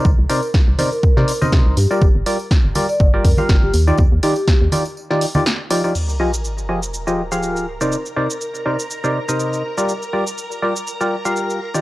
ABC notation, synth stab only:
X:1
M:4/4
L:1/16
Q:"Swing 16ths" 1/4=122
K:Gphr
V:1 name="Synth stab"
z2 [C,EBcd] z3 [C,EBcd] z2 [C,EBcd] z [C,EBce]3 z [G,FGBd] | z2 [G,FGBd] z3 [G,FGBd] z2 [G,FGBd] z [G,FGBf]3 z [E,EFGd] | z2 [E,EFGd] z3 [E,EFGd] z2 [E,EFGd] z [E,EFGd] z2 [F,EFGd] [F,EFGd] | z2 [F,FGAe] z3 [F,FGAe] z2 [F,FGAe] z [F,FGAf]3 z [C,EBcd] |
z2 [C,EBcd] z3 [C,EBcd] z2 [C,EBcd] z [C,EBce]3 z [G,FGBd] | z2 [G,FGBd] z3 [G,FGBd] z2 [G,FGBd] z [G,FGBf]3 z [E,EFGd] |]